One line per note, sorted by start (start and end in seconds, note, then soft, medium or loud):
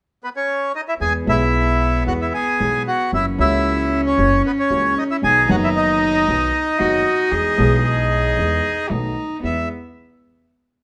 0.24 0.29 B3 medium
0.24 0.29 B4 medium
0.36 0.72 C#4 soft
0.36 0.72 C#5 medium
0.75 0.81 D#4 soft
0.75 0.81 D#5 medium
0.88 0.94 E4 soft
0.88 0.94 E5 medium
1.00 1.23 E2 soft
1.00 1.23 E3 soft
1.00 1.23 G#3 soft
1.00 3.14 B3 medium
1.00 1.23 B3 soft
1.00 1.23 G#4 soft
1.00 1.13 G#4 medium
1.00 1.13 G#5 medium
1.25 2.02 B1 medium
1.25 2.03 B1 medium
1.25 2.03 B2 medium
1.25 2.01 E3 soft
1.25 2.02 G#3 soft
1.25 2.03 B3 soft
1.25 2.03 E4 soft
1.29 2.04 G#4 medium
1.29 2.04 E5 medium
2.06 2.29 E2 soft
2.06 2.29 E3 soft
2.06 2.29 G#3 soft
2.06 2.29 B3 soft
2.06 2.13 F#4 medium
2.06 2.29 G#4 soft
2.06 2.13 F#5 medium
2.21 2.33 E4 soft
2.21 2.33 E5 medium
2.34 2.83 G#4 medium
2.34 2.83 G#5 medium
2.60 2.82 B1 soft
2.60 2.82 B2 soft
2.60 2.82 E3 soft
2.60 2.82 G#3 soft
2.60 2.82 B3 soft
2.60 2.82 G#4 soft
2.88 3.11 F#4 medium
2.88 3.11 F#5 medium
3.12 3.34 F#1 soft
3.12 3.35 F#2 soft
3.12 3.35 E3 soft
3.12 3.35 F#3 soft
3.12 3.35 A#3 soft
3.12 5.24 C#4 medium
3.12 3.35 C#4 soft
3.12 3.26 E4 medium
3.12 3.35 F#4 soft
3.12 3.26 E5 medium
3.37 4.14 C#2 medium
3.37 4.14 C#3 medium
3.37 4.13 E3 soft
3.37 4.13 A#3 soft
3.37 4.14 C#4 soft
3.37 4.01 E4 soft
3.37 4.01 E5 medium
3.41 4.15 F#4 medium
4.06 4.42 C#4 medium
4.06 4.42 C#5 medium
4.18 4.40 F#1 soft
4.18 4.40 F#2 soft
4.18 4.40 E3 soft
4.18 4.40 F#3 soft
4.18 4.40 A#3 soft
4.18 4.40 C#4 soft
4.18 4.40 F#4 soft
4.46 4.52 B3 soft
4.46 4.52 B4 medium
4.59 4.95 C#4 medium
4.59 4.98 C#5 medium
4.70 4.92 C#2 soft
4.70 4.92 C#3 soft
4.70 4.92 E3 soft
4.70 4.92 A#3 soft
4.70 4.92 C#4 soft
4.70 4.92 F#4 soft
4.98 5.04 D#4 medium
4.98 5.04 D#5 medium
5.11 5.17 E4 medium
5.11 5.16 E5 medium
5.22 5.45 B1 soft
5.22 5.44 B2 soft
5.22 5.44 D#3 soft
5.22 5.44 F#3 soft
5.22 5.45 B3 soft
5.22 6.82 D#4 medium
5.22 5.45 F#4 soft
5.22 5.48 G#4 medium
5.22 5.50 G#5 medium
5.47 6.24 F#1 medium
5.47 6.24 F#2 medium
5.47 6.23 D#3 medium
5.47 6.23 F#3 soft
5.47 6.24 B3 soft
5.47 5.56 F#5 medium
5.51 6.25 F#4 medium
5.51 5.56 F#4 soft
5.64 5.69 E4 soft
5.64 5.69 E5 medium
5.76 8.87 D#4 medium
5.76 8.87 D#5 medium
6.28 6.50 B1 soft
6.28 6.50 B2 soft
6.28 6.50 D#3 soft
6.28 6.50 F#3 soft
6.28 6.50 B3 soft
6.28 6.50 F#4 soft
6.79 7.02 F#1 soft
6.79 7.01 F#2 soft
6.79 7.01 D#3 soft
6.79 7.02 F#3 soft
6.79 7.01 B3 soft
6.79 7.01 F#4 soft
6.79 7.33 F#4 medium
7.31 7.54 E2 soft
7.31 7.54 E3 soft
7.31 7.54 G#3 soft
7.31 7.54 B3 soft
7.31 7.83 G#4 medium
7.31 7.54 G#4 soft
7.56 8.33 B1 medium
7.56 8.33 B2 medium
7.56 8.32 E3 medium
7.56 8.32 G#3 medium
7.56 8.33 B3 soft
7.56 8.34 G#4 medium
7.83 8.92 G#4 medium
8.36 8.59 E2 soft
8.36 8.59 E3 soft
8.36 8.59 G#3 soft
8.36 8.59 B3 soft
8.36 8.59 G#4 soft
8.89 9.13 B1 soft
8.89 9.12 B2 soft
8.89 9.12 D#3 soft
8.89 9.12 A3 soft
8.89 9.13 B3 soft
8.89 9.43 D#4 medium
8.89 9.13 F#4 soft
9.43 9.65 E2 soft
9.43 9.66 E2 soft
9.43 9.65 G#3 soft
9.43 9.65 B3 soft
9.43 9.68 B3 medium
9.43 9.65 E4 soft
9.43 9.69 E5 medium